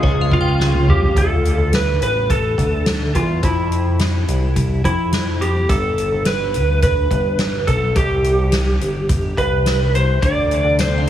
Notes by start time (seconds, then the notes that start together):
Already playing: C#3 F3 G#3 F4 G#4
0.03 C#2 C#4 C#5, kick, ride
0.21 F5
0.32 F4, kick
0.41 G5
0.60 C#4, snare
0.74 high tom
0.88 F4 G4, mid tom
1.02 floor tom
1.16 D2 A4, kick, closed hi-hat
1.45 closed hi-hat
1.58 D2
1.73 B4, snare, closed hi-hat
2.01 A1 B4, closed hi-hat
2.30 A4, kick, closed hi-hat
2.58 D2, kick, closed hi-hat
2.86 snare, closed hi-hat
3.15 E2 F4, kick, closed hi-hat
3.43 F2 E4, kick, closed hi-hat
3.72 closed hi-hat
3.99 snare, closed hi-hat
4.28 C2, closed hi-hat
4.56 kick, closed hi-hat
4.84 F2 E4, kick, closed hi-hat
5.12 snare, closed hi-hat
5.41 G4, closed hi-hat
5.69 G1 A4, kick, closed hi-hat
5.98 closed hi-hat
6.12 G1
6.25 B4, snare, closed hi-hat
6.54 D2, closed hi-hat
6.82 B4, kick, closed hi-hat
7.11 G1, kick, closed hi-hat
7.39 snare, closed hi-hat
7.67 B1 A4, kick, closed hi-hat
7.96 C2 G4, kick, closed hi-hat
8.24 closed hi-hat
8.52 snare, closed hi-hat
8.80 G1, closed hi-hat
9.09 kick, closed hi-hat
9.37 C2 B4, kick, closed hi-hat
9.66 snare, closed hi-hat
9.95 C5, closed hi-hat
10.22 D2 C3 D3 F3 A3 D4 A4 D5, kick, closed hi-hat
10.51 D4, closed hi-hat
10.64 D2
10.79 C4 C5 D5, snare, closed hi-hat, tambourine
10.98 F5
11.07 A1